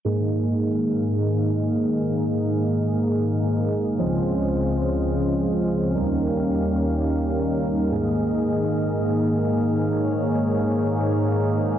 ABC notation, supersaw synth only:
X:1
M:4/4
L:1/8
Q:1/4=122
K:Ab
V:1 name="Supersaw synth"
[A,,B,EA]8- | [A,,B,EA]8 | [F,A,CDA]8 | [G,B,DEB]8 |
[A,,B,EA]8- | [A,,B,EA]8 |]